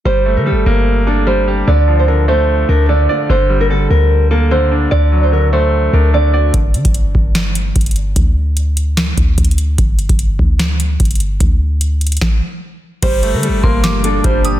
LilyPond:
<<
  \new Staff \with { instrumentName = "Synth bell" } { \time 4/4 \key g \minor \tempo 4 = 148 r1 | r1 | r1 | r1 |
r1 | r1 | r1 | r1 |
r4. c'''8 d'''4. ees'''8 | }
  \new Staff \with { instrumentName = "Nylon-string guitar" } { \time 4/4 \key g \minor c''8. bes'16 a'8 bes'4 a'8 c''8 r8 | d''8. c''16 bes'8 c''4 bes'8 d''8 f'8 | c''8. bes'16 a'8 bes'4 a'8 c''8 r8 | d''8. c''16 bes'8 c''4 bes'8 d''8 fis'8 |
r1 | r1 | r1 | r1 |
c''8. bes'16 a'8 bes'4 a'8 c''8 r8 | }
  \new Staff \with { instrumentName = "Ambient pad" } { \time 4/4 \key g \minor r1 | r1 | r1 | r1 |
r1 | r1 | r1 | r1 |
<bes, g d' a''>1 | }
  \new Staff \with { instrumentName = "Grand piano" } { \clef bass \time 4/4 \key g \minor g8 a8 g8 bes4 d'8 g8 g'8 | d8 f8 d8 a4 d'8 d8 d''8 | d8 g8 d4. bes8 d8 d'8 | d8 fis8 d8 a4 d'8 d8 d''8 |
r1 | r1 | r1 | r1 |
g8 a8 g8 bes4 d'8 g8 g'8 | }
  \new Staff \with { instrumentName = "808-style bass" } { \clef bass \time 4/4 \key g \minor g,,8. d16. g,,16. g,,2~ g,,8 | d,2~ d,8 d,4 r8 | g,,4. d,2~ d,8 | d,2~ d,8 d,4. |
g,,8 d16 g,,8. g,,4. g,,4 | d,2~ d,8 d,8 d,4 | g,,8. g,,8. d,4. g,,4 | d,2 r2 |
g,,8. d16. g,,16. g,,4. g,,4 | }
  \new DrumStaff \with { instrumentName = "Drums" } \drummode { \time 4/4 r4 r4 r4 r4 | r4 r4 r4 r4 | r4 r4 r4 r4 | r4 r4 r4 r4 |
<hh bd>8 hh16 <hh bd>16 hh8 bd8 <hh sn>8 hh8 <hh bd>32 hh32 hh32 hh32 hh8 | <hh bd>4 hh8 hh8 <hh sn>8 <hh bd>8 \tuplet 3/2 { <hh bd>16 hh16 hh16 hh16 r16 r16 } | <hh bd>8 hh16 <hh bd>16 hh8 bd8 <hh sn>8 hh8 <hh bd>32 hh32 hh32 hh32 hh8 | <hh bd>4 hh8 hh32 hh32 hh32 hh32 <bd sn>4 r4 |
<cymc hh bd>8 hh8 hh8 bd8 <hh sn>8 hh8 <hh bd>8 hh8 | }
>>